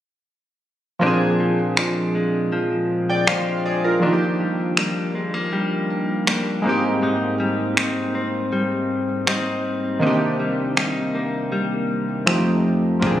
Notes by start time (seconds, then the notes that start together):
0.99 A#2 F3 A#3 C4 D4
1.05 D4 G#4
1.40 F3
1.77 F3 G#3 D4, finger snap
2.15 G#3
2.52 F3
3.10 D5 G5
3.27 F3 G#3 D4 C5 F5, finger snap
3.65 G#4 D5
3.84 F4 A#4
4.00 D#3 F3 A#3 D4
4.05 D#4 F4
4.13 G4
4.40 G3
4.77 G3 A#3 D4, finger snap
5.15 G#3
5.34 A#3
5.53 G3
6.27 G3 A#3 D4, finger snap
6.62 G#2 G#3 A#3 C4
6.67 D#4 G4
7.03 G#2 D#4
7.40 G3
7.77 G3 C4 D#4, finger snap
8.15 C4
8.53 G3
9.27 G3 C4 D#4, finger snap
10.00 C3 D#3 A#3 C4 D#4
10.05 D4 G4
10.40 G3
10.77 G3 A#3 D#4, finger snap
11.15 A#3
11.52 G3
12.26 F2 F3 A3 C4 D#4 G4, finger snap
12.99 A#1 A#2 F3 A#3 C4 D4, kick
13.05 D4 G#4